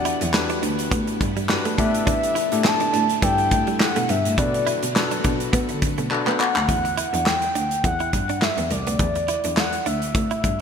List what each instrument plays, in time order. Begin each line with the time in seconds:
Already playing: string machine E3 G3 B3 E4 F#5, tine electric piano D4 F#4 G4 D5, analog synth lead F#5
0.05 clean electric guitar E4, closed hi-hat
0.21 cello E2, muted clean electric guitar stroke, closed hi-hat
0.34 tine electric piano D4 F#4 G4 B4, muted clean electric guitar stroke, snare, clap
0.50 clean electric guitar D4, closed hi-hat
0.63 cello D2, clean electric guitar D4, closed hi-hat
0.79 closed hi-hat
0.91 cello A2, clean electric guitar B3, kick, closed hi-hat
1.07 muted clean electric guitar stroke, closed hi-hat
1.21 cello G2, kick, closed hi-hat
1.37 clean electric guitar G3, closed hi-hat
1.49 tine electric piano D4 F#4 G4 B4, muted clean electric guitar stroke, snare, clap
1.65 clean electric guitar A3, closed hi-hat
1.78 cello A2, string machine D3 G3 A3, clean electric guitar B3, tine electric piano D4 E4 G4 A4, analog synth lead E5, kick, closed hi-hat
1.85 tine electric piano B4
1.95 closed hi-hat
2.07 clean electric guitar D4, kick, closed hi-hat
2.23 closed hi-hat
2.35 clean electric guitar E4, closed hi-hat
2.52 cello A2, tine electric piano D4 E4 G4 A4, muted clean electric guitar stroke, closed hi-hat
2.65 analog synth lead A5, muted clean electric guitar stroke, snare, clap
2.80 clean electric guitar D4, closed hi-hat
2.93 cello A2, clean electric guitar D4, closed hi-hat
3.09 closed hi-hat
3.22 cello G2, clean electric guitar B3, tine electric piano D4 E4 G4 A4, analog synth lead G5, kick, closed hi-hat
3.38 muted clean electric guitar stroke, closed hi-hat
3.51 cello A2, kick, closed hi-hat
3.67 clean electric guitar G3, closed hi-hat
3.80 analog synth lead F#5, muted clean electric guitar stroke, snare, clap
3.96 cello B2, clean electric guitar A3, closed hi-hat
4.09 cello G2, clean electric guitar B3, analog synth lead E5, closed hi-hat
4.25 cello A2, closed hi-hat
4.38 cello B2, string machine F#3 A3 F#4, tine electric piano D4 F#4 A4 B4, clean electric guitar D4, analog synth lead D5, kick, closed hi-hat
4.54 closed hi-hat
4.67 clean electric guitar E4, closed hi-hat
4.83 cello B2, muted clean electric guitar stroke, closed hi-hat
4.95 tine electric piano D4 F#4 A4 B4, muted clean electric guitar stroke, snare, clap
5.11 clean electric guitar D4, closed hi-hat
5.24 cello B2, clean electric guitar D4, kick, closed hi-hat
5.40 closed hi-hat
5.53 clean electric guitar B3, cello B3, kick, closed hi-hat
5.69 cello D3, muted clean electric guitar stroke, closed hi-hat
5.82 kick, closed hi-hat
5.98 cello B2, clean electric guitar A3, closed hi-hat
6.11 tine electric piano D4 F#4 A4 B4, muted clean electric guitar stroke, clap
6.27 clean electric guitar B3, cello B3, clap
6.40 clean electric guitar D4, analog synth lead F#5, clap
6.56 cello D2, clap
6.69 cello E2, kick, closed hi-hat
6.85 muted clean electric guitar stroke, closed hi-hat
6.97 clean electric guitar E4, closed hi-hat
7.13 cello E2, clean electric guitar D4, closed hi-hat
7.26 analog synth lead G5, snare, clap
7.42 closed hi-hat
7.55 cello D2, clean electric guitar D4, closed hi-hat
7.71 closed hi-hat
7.84 cello E2, analog synth lead F#5, kick, closed hi-hat
8.00 clean electric guitar E4, closed hi-hat
8.13 cello G2, analog synth lead F#5, muted clean electric guitar stroke, kick, closed hi-hat
8.29 clean electric guitar D4, closed hi-hat
8.42 analog synth lead E5, snare, clap
8.58 cello E2, clean electric guitar B3, closed hi-hat
8.71 cello C2, analog synth lead D5, muted clean electric guitar stroke, closed hi-hat
8.87 cello D2, clean electric guitar B3, closed hi-hat
8.99 cello E2, kick, closed hi-hat
9.15 muted clean electric guitar stroke, closed hi-hat
9.28 clean electric guitar E4, closed hi-hat
9.44 cello E2, clean electric guitar D4, closed hi-hat
9.57 analog synth lead F#5, snare, clap
9.73 closed hi-hat
9.86 cello D2, clean electric guitar D4, analog synth lead E5, closed hi-hat
10.02 closed hi-hat
10.15 cello A2, kick, closed hi-hat
10.31 clean electric guitar E4, closed hi-hat
10.44 cello G2, muted clean electric guitar stroke, kick, closed hi-hat